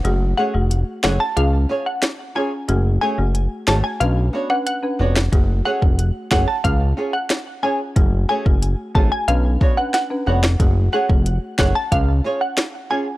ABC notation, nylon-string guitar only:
X:1
M:4/4
L:1/8
Q:1/4=91
K:F#m
V:1 name="Nylon-string guitar"
z [A,CGc] z [A,CGc] z [C^EGc] z [CEGc] | z [A,CGc] z [A,CGc] z [B,DFc] z [B,DFc] | z [A,CGc] z [A,CGc] z [C^EGc] z [CEGc] | z [A,CGc] z [A,CGc] z [B,DFc] z [B,DFc] |
z [A,CGc] z [A,CGc] z [C^EGc] z [CEGc] |]